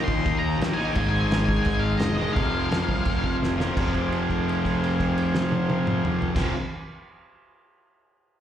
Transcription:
Already playing: distorted electric guitar D#3 A#3 D#4, transistor combo organ G4 A#4 D#5
0.04 fingered electric bass A#2, lead electric guitar C6
0.08 kick
0.26 fingered electric bass D#3, kick, crash
0.39 fingered electric bass D#2, lead electric guitar A#5
0.58 fingered electric bass A#1, crash
0.62 snare
0.74 distorted electric guitar D#4, lead electric guitar G#5
0.80 distorted electric guitar D#3 A#3
0.95 fingered electric bass G#1, distorted electric guitar G#2 D#3, transistor combo organ G#4 C5 D#5, kick, crash
1.00 distorted electric guitar G#3
1.09 lead electric guitar G#5
1.27 fingered electric bass G#1, lead electric guitar G#5, crash
1.32 snare
1.45 lead electric guitar G#5, kick
1.63 fingered electric bass G#1, lead electric guitar G#5, kick, crash
1.80 lead electric guitar F5
1.98 fingered electric bass E1, lead electric guitar D#5, snare, crash
2.16 distorted electric guitar D#3 G#3, lead electric guitar D#5
2.22 distorted electric guitar G#2
2.33 fingered electric bass F1, distorted electric guitar F2 C3, lead electric guitar F5, kick, crash
2.37 distorted electric guitar F3, transistor combo organ G#4 C5 F5
2.53 fingered electric bass F1
2.71 fingered electric bass F2, snare, crash
2.88 fingered electric bass C2, kick
3.05 fingered electric bass F2, kick, crash
3.23 fingered electric bass F1, kick
3.42 fingered electric bass F1, snare
3.57 distorted electric guitar C3 F3, snare
3.62 distorted electric guitar F2
3.76 fingered electric bass F1, distorted electric guitar F2 C3 F3, transistor combo organ G#4 C5 F5, kick, crash
3.94 kick, crash
4.12 crash
4.30 kick, crash
4.49 crash
4.65 kick, crash
4.84 crash
5.00 kick, crash
5.18 crash
5.35 snare
5.52 high tom
5.70 high tom
5.87 mid tom
6.05 mid tom
6.22 floor tom
6.35 fingered electric bass F1, distorted electric guitar F2 C3, transistor combo organ G#4 C5 F5, kick, snare, crash
6.39 distorted electric guitar F3

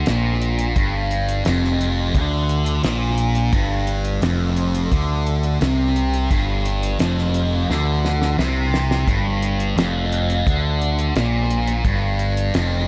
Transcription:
0.06 picked electric bass A#1, distorted electric guitar A#2, snare, closed hi-hat
0.42 closed hi-hat
0.59 closed hi-hat
0.76 picked electric bass G1, distorted electric guitar G2, kick, closed hi-hat
1.11 closed hi-hat
1.29 closed hi-hat
1.45 picked electric bass F1, distorted electric guitar F2, snare, closed hi-hat
1.64 snare
1.81 closed hi-hat
2.15 picked electric bass D2, distorted electric guitar D3, kick, closed hi-hat
2.49 closed hi-hat
2.66 closed hi-hat
2.83 picked electric bass A#1, distorted electric guitar A#2, snare, closed hi-hat
3.18 closed hi-hat
3.35 closed hi-hat
3.53 picked electric bass G1, distorted electric guitar G2, kick, closed hi-hat
3.87 closed hi-hat
4.05 closed hi-hat
4.22 picked electric bass F1, distorted electric guitar F2, snare, closed hi-hat
4.57 closed hi-hat
4.75 closed hi-hat
4.92 picked electric bass D2, distorted electric guitar D3, kick, closed hi-hat
5.27 closed hi-hat
5.43 closed hi-hat
5.61 picked electric bass C2, distorted electric guitar C3, snare, closed hi-hat
5.96 closed hi-hat
6.14 closed hi-hat
6.31 picked electric bass G1, distorted electric guitar G2, kick, closed hi-hat
6.65 closed hi-hat
6.83 closed hi-hat
6.99 picked electric bass F1, distorted electric guitar F2, snare, closed hi-hat
7.18 snare
7.34 closed hi-hat
7.70 picked electric bass D2, distorted electric guitar D3, snare
8.05 snare
8.22 snare
8.38 picked electric bass C2, distorted electric guitar C3, snare
8.74 snare
8.91 snare
9.07 picked electric bass G1, distorted electric guitar G2, kick, closed hi-hat
9.42 closed hi-hat
9.60 closed hi-hat
9.76 picked electric bass F1, distorted electric guitar F2, snare, closed hi-hat
10.12 closed hi-hat
10.30 closed hi-hat
10.47 picked electric bass D2, distorted electric guitar D3, kick, closed hi-hat
10.82 closed hi-hat
10.99 closed hi-hat
11.16 picked electric bass A#1, distorted electric guitar A#2, snare, closed hi-hat
11.51 closed hi-hat
11.67 closed hi-hat
11.84 picked electric bass G1, distorted electric guitar G2, kick, closed hi-hat
12.19 closed hi-hat
12.37 closed hi-hat
12.54 picked electric bass F1, distorted electric guitar F2, snare, closed hi-hat

